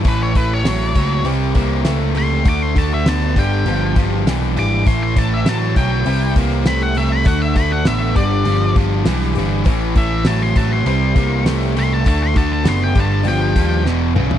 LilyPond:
<<
  \new Staff \with { instrumentName = "Lead electric guitar" } { \time 4/4 \key g \lydian \tempo 4 = 100 b'16 cis''16 b'16 cis''16 cis''4 r4. c'''8 | d'''16 c'''16 a''16 e''16 a''8 g''4 r4 d'''8 | c'''16 c'''16 a''16 e''16 a''8 g''4 r8 b''16 fis''16 e''16 b''16 | fis''16 e''16 b''16 fis''16 e''8 d''4 r4. |
r8 e''8 a''16 c'''16 a''16 c'''16 c'''4 r8 c'''16 a''16 | a''16 c'''16 a''16 a''16 c'''16 g''16 a''8 g''4 r4 | }
  \new Staff \with { instrumentName = "Steel-string acoustic guitar" } { \time 4/4 \key g \lydian <a, e a cis' e'>8 <a cis' e'>8 <e a cis' e'>8 <a cis' e'>8 <c e g c' e'>4 <e g c' e'>8 <g c' e'>8 | <d a d' fis'>8 <a d' fis'>8 <d a d' fis'>8 <g b d' g'>8 <g, d g b d' g'>4 <g b d' g'>8 <g b d' g'>8 | <a, e a cis' e'>8 <a cis' e'>8 <e a cis' e'>8 <a cis' e'>8 <c e g c' e'>4 <e g c' e'>8 <g c' e'>8 | <d a d' fis'>8 <a d' fis'>8 <d a d' fis'>8 <g, d g b d' g'>4. <g b d' g'>8 <g b d' g'>8 |
<a, e a cis' e'>8 <a cis' e'>8 <e a cis' e'>4 <c e g c' e'>4 <e g c' e'>8 <g c' e'>8 | <d a d' fis'>8 <a d' fis'>8 <d a d' fis'>8 <g b d' g'>8 <g, d g b d' g'>4 <e b e' gis'>8 <e b e' gis'>8 | }
  \new Staff \with { instrumentName = "Distorted electric guitar" } { \clef bass \time 4/4 \key g \lydian <a, e>8 <a, e>8 <a, fis>8 <a, fis>8 <c g>8 <c bes>8 <c a>8 <c a>8 | <d a>8 <d a>8 <d b>8 <g, d>8 <g, f>8 <g, f>8 <g, e>8 <g, e>8 | <a, e>8 <a, e>8 <a, fis>8 <a, fis>8 <c g>8 <c bes>8 <c a>8 <c a>8 | <d a>8 <d a>8 <d b>8 <g, d>8 <g, f>8 <g, f>8 <g, e>8 <g, e>8 |
<a, e>8 <a, e>8 <a, fis>8 <a, fis>8 <c g>8 <c bes>8 <c a>8 <c a>8 | <d a>8 <d a>8 <d b>8 <g, d>8 <g, f>8 <g, f>8 <e, b,>8 <e, cis>8 | }
  \new Staff \with { instrumentName = "Overdriven electric guitar" } { \clef bass \time 4/4 \key g \lydian <a, e>8 <a, e>8 <a, fis>8 <a, fis>8 <c g>8 <c bes>8 <c a>8 <c a>8 | <d a>8 <d a>8 <d b>8 <g, d>8 <g, f>8 <g, f>8 <g, e>8 <g, e>8 | <a, e>8 <a, e>8 <a, fis>8 <a, fis>8 <c g>8 <c bes>8 <c a>8 <c a>8 | <d a>8 <d a>8 <d b>8 <g, d>8 <g, f>8 <g, f>8 <g, e>8 <g, e>8 |
<a, e>8 <a, e>8 <a, fis>8 <a, fis>8 <c g>8 <c bes>8 <c a>8 <c a>8 | <d a>8 <d a>8 <d b>8 <g, d>8 <g, f>8 <g, f>8 <e, b,>8 <e, cis>8 | }
  \new Staff \with { instrumentName = "Picked electric bass" } { \clef bass \time 4/4 \key g \lydian a,,4 a,,8 cis,8 c,8 c,8 cis,4 | d,8 d,8 d,8 g,,8 g,,8 g,,8 b,,8 gis,,8 | a,,4 a,,8 b,,8 c,8 c,8 c,4 | d,8 d,8 a,,8 g,,8 g,,8 g,,8 b,,8 g,,8 |
a,,4 a,,8 a,,8 c,8 c,8 c,4 | d,8 d,8 fis,,8 g,,8 g,,8 dis,8 e,,8 b,,8 | }
  \new DrumStaff \with { instrumentName = "Drums" } \drummode { \time 4/4 <hho bd>8 <hho bd>8 <hho sn>8 <hho bd>8 hho8 <hho bd>8 <hho sn>8 hho8 | <hho bd>8 <hho bd>8 <hho sn>8 <hho bd>8 hho8 <hho bd>8 <hho sn>16 sn16 hho8 | <hho bd>8 <hho bd>8 <hho sn>8 <hho bd>8 hho8 <hho bd>16 sn16 <hho sn>16 sn16 hho8 | <hho bd>8 <hho bd>8 <hho sn>8 <hho bd>8 hho8 <hho bd>8 <hho sn>16 sn16 hho8 |
<hho bd>8 <hho bd>8 <hho sn>8 <hho bd>8 hho8 <hho bd>8 <hho sn>16 sn16 hho8 | <hho bd>8 <hho bd>8 <hho sn>8 <hho bd>8 hho8 <hho bd>8 sn8 toml16 tomfh16 | }
>>